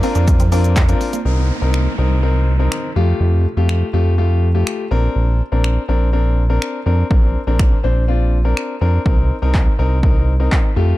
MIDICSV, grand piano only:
0, 0, Header, 1, 2, 480
1, 0, Start_track
1, 0, Key_signature, -2, "major"
1, 0, Tempo, 487805
1, 1232, Time_signature, 4, 2, 24, 8
1, 10801, End_track
2, 0, Start_track
2, 0, Title_t, "Grand piano"
2, 0, Program_c, 0, 0
2, 30, Note_on_c, 0, 60, 96
2, 31, Note_on_c, 0, 62, 91
2, 33, Note_on_c, 0, 65, 86
2, 35, Note_on_c, 0, 70, 109
2, 411, Note_off_c, 0, 60, 0
2, 412, Note_off_c, 0, 62, 0
2, 412, Note_off_c, 0, 65, 0
2, 413, Note_off_c, 0, 70, 0
2, 510, Note_on_c, 0, 60, 94
2, 511, Note_on_c, 0, 62, 85
2, 513, Note_on_c, 0, 65, 84
2, 515, Note_on_c, 0, 70, 100
2, 796, Note_off_c, 0, 60, 0
2, 797, Note_off_c, 0, 62, 0
2, 798, Note_off_c, 0, 65, 0
2, 798, Note_off_c, 0, 70, 0
2, 869, Note_on_c, 0, 60, 91
2, 871, Note_on_c, 0, 62, 82
2, 873, Note_on_c, 0, 65, 80
2, 875, Note_on_c, 0, 70, 98
2, 1156, Note_off_c, 0, 60, 0
2, 1157, Note_off_c, 0, 62, 0
2, 1157, Note_off_c, 0, 65, 0
2, 1158, Note_off_c, 0, 70, 0
2, 1230, Note_on_c, 0, 60, 79
2, 1232, Note_on_c, 0, 63, 71
2, 1235, Note_on_c, 0, 70, 85
2, 1516, Note_off_c, 0, 60, 0
2, 1517, Note_off_c, 0, 63, 0
2, 1518, Note_off_c, 0, 70, 0
2, 1589, Note_on_c, 0, 60, 81
2, 1591, Note_on_c, 0, 63, 77
2, 1594, Note_on_c, 0, 70, 87
2, 1876, Note_off_c, 0, 60, 0
2, 1877, Note_off_c, 0, 63, 0
2, 1878, Note_off_c, 0, 70, 0
2, 1949, Note_on_c, 0, 60, 87
2, 1952, Note_on_c, 0, 63, 77
2, 1954, Note_on_c, 0, 70, 93
2, 2140, Note_off_c, 0, 60, 0
2, 2142, Note_off_c, 0, 63, 0
2, 2143, Note_off_c, 0, 70, 0
2, 2190, Note_on_c, 0, 60, 86
2, 2192, Note_on_c, 0, 63, 75
2, 2195, Note_on_c, 0, 70, 92
2, 2476, Note_off_c, 0, 60, 0
2, 2477, Note_off_c, 0, 63, 0
2, 2478, Note_off_c, 0, 70, 0
2, 2551, Note_on_c, 0, 60, 83
2, 2553, Note_on_c, 0, 63, 76
2, 2556, Note_on_c, 0, 70, 89
2, 2836, Note_off_c, 0, 60, 0
2, 2837, Note_off_c, 0, 63, 0
2, 2839, Note_off_c, 0, 70, 0
2, 2911, Note_on_c, 0, 57, 86
2, 2913, Note_on_c, 0, 65, 83
2, 2915, Note_on_c, 0, 67, 95
2, 3391, Note_off_c, 0, 57, 0
2, 3393, Note_off_c, 0, 65, 0
2, 3394, Note_off_c, 0, 67, 0
2, 3511, Note_on_c, 0, 57, 84
2, 3513, Note_on_c, 0, 65, 78
2, 3516, Note_on_c, 0, 67, 92
2, 3797, Note_off_c, 0, 57, 0
2, 3798, Note_off_c, 0, 65, 0
2, 3799, Note_off_c, 0, 67, 0
2, 3870, Note_on_c, 0, 57, 88
2, 3872, Note_on_c, 0, 65, 80
2, 3875, Note_on_c, 0, 67, 95
2, 4061, Note_off_c, 0, 57, 0
2, 4062, Note_off_c, 0, 65, 0
2, 4063, Note_off_c, 0, 67, 0
2, 4110, Note_on_c, 0, 57, 81
2, 4113, Note_on_c, 0, 65, 78
2, 4116, Note_on_c, 0, 67, 93
2, 4396, Note_off_c, 0, 57, 0
2, 4397, Note_off_c, 0, 65, 0
2, 4399, Note_off_c, 0, 67, 0
2, 4470, Note_on_c, 0, 57, 83
2, 4472, Note_on_c, 0, 65, 72
2, 4475, Note_on_c, 0, 67, 91
2, 4756, Note_off_c, 0, 57, 0
2, 4757, Note_off_c, 0, 65, 0
2, 4758, Note_off_c, 0, 67, 0
2, 4830, Note_on_c, 0, 60, 89
2, 4832, Note_on_c, 0, 62, 77
2, 4835, Note_on_c, 0, 70, 100
2, 5311, Note_off_c, 0, 60, 0
2, 5312, Note_off_c, 0, 62, 0
2, 5314, Note_off_c, 0, 70, 0
2, 5430, Note_on_c, 0, 60, 82
2, 5432, Note_on_c, 0, 62, 77
2, 5435, Note_on_c, 0, 70, 89
2, 5716, Note_off_c, 0, 60, 0
2, 5717, Note_off_c, 0, 62, 0
2, 5718, Note_off_c, 0, 70, 0
2, 5790, Note_on_c, 0, 60, 85
2, 5793, Note_on_c, 0, 62, 75
2, 5795, Note_on_c, 0, 70, 90
2, 5981, Note_off_c, 0, 60, 0
2, 5983, Note_off_c, 0, 62, 0
2, 5984, Note_off_c, 0, 70, 0
2, 6030, Note_on_c, 0, 60, 84
2, 6032, Note_on_c, 0, 62, 74
2, 6035, Note_on_c, 0, 70, 94
2, 6316, Note_off_c, 0, 60, 0
2, 6317, Note_off_c, 0, 62, 0
2, 6318, Note_off_c, 0, 70, 0
2, 6391, Note_on_c, 0, 60, 80
2, 6393, Note_on_c, 0, 62, 71
2, 6395, Note_on_c, 0, 70, 90
2, 6676, Note_off_c, 0, 60, 0
2, 6677, Note_off_c, 0, 62, 0
2, 6679, Note_off_c, 0, 70, 0
2, 6749, Note_on_c, 0, 60, 83
2, 6752, Note_on_c, 0, 62, 73
2, 6755, Note_on_c, 0, 70, 90
2, 6941, Note_off_c, 0, 60, 0
2, 6942, Note_off_c, 0, 62, 0
2, 6943, Note_off_c, 0, 70, 0
2, 6990, Note_on_c, 0, 60, 80
2, 6993, Note_on_c, 0, 62, 72
2, 6995, Note_on_c, 0, 70, 86
2, 7276, Note_off_c, 0, 60, 0
2, 7277, Note_off_c, 0, 62, 0
2, 7279, Note_off_c, 0, 70, 0
2, 7351, Note_on_c, 0, 60, 83
2, 7353, Note_on_c, 0, 62, 78
2, 7356, Note_on_c, 0, 70, 93
2, 7636, Note_off_c, 0, 60, 0
2, 7637, Note_off_c, 0, 62, 0
2, 7639, Note_off_c, 0, 70, 0
2, 7710, Note_on_c, 0, 60, 87
2, 7713, Note_on_c, 0, 62, 80
2, 7715, Note_on_c, 0, 72, 93
2, 7901, Note_off_c, 0, 60, 0
2, 7903, Note_off_c, 0, 62, 0
2, 7904, Note_off_c, 0, 72, 0
2, 7950, Note_on_c, 0, 60, 86
2, 7952, Note_on_c, 0, 62, 77
2, 7955, Note_on_c, 0, 65, 89
2, 8236, Note_off_c, 0, 60, 0
2, 8237, Note_off_c, 0, 62, 0
2, 8239, Note_off_c, 0, 65, 0
2, 8310, Note_on_c, 0, 60, 80
2, 8313, Note_on_c, 0, 62, 74
2, 8315, Note_on_c, 0, 70, 91
2, 8596, Note_off_c, 0, 60, 0
2, 8597, Note_off_c, 0, 62, 0
2, 8598, Note_off_c, 0, 70, 0
2, 8670, Note_on_c, 0, 60, 84
2, 8673, Note_on_c, 0, 62, 76
2, 8675, Note_on_c, 0, 70, 93
2, 8861, Note_off_c, 0, 60, 0
2, 8862, Note_off_c, 0, 62, 0
2, 8863, Note_off_c, 0, 70, 0
2, 8910, Note_on_c, 0, 60, 82
2, 8912, Note_on_c, 0, 63, 70
2, 8915, Note_on_c, 0, 70, 90
2, 9196, Note_off_c, 0, 60, 0
2, 9197, Note_off_c, 0, 63, 0
2, 9199, Note_off_c, 0, 70, 0
2, 9269, Note_on_c, 0, 60, 85
2, 9271, Note_on_c, 0, 63, 76
2, 9274, Note_on_c, 0, 70, 93
2, 9556, Note_off_c, 0, 60, 0
2, 9557, Note_off_c, 0, 63, 0
2, 9558, Note_off_c, 0, 70, 0
2, 9629, Note_on_c, 0, 60, 86
2, 9632, Note_on_c, 0, 63, 76
2, 9634, Note_on_c, 0, 70, 96
2, 9821, Note_off_c, 0, 60, 0
2, 9822, Note_off_c, 0, 63, 0
2, 9823, Note_off_c, 0, 70, 0
2, 9870, Note_on_c, 0, 60, 85
2, 9872, Note_on_c, 0, 63, 79
2, 9875, Note_on_c, 0, 70, 91
2, 10156, Note_off_c, 0, 60, 0
2, 10157, Note_off_c, 0, 63, 0
2, 10158, Note_off_c, 0, 70, 0
2, 10230, Note_on_c, 0, 60, 84
2, 10232, Note_on_c, 0, 63, 72
2, 10234, Note_on_c, 0, 70, 86
2, 10516, Note_off_c, 0, 60, 0
2, 10517, Note_off_c, 0, 63, 0
2, 10518, Note_off_c, 0, 70, 0
2, 10589, Note_on_c, 0, 57, 91
2, 10592, Note_on_c, 0, 65, 78
2, 10594, Note_on_c, 0, 67, 98
2, 10801, Note_off_c, 0, 57, 0
2, 10801, Note_off_c, 0, 65, 0
2, 10801, Note_off_c, 0, 67, 0
2, 10801, End_track
0, 0, End_of_file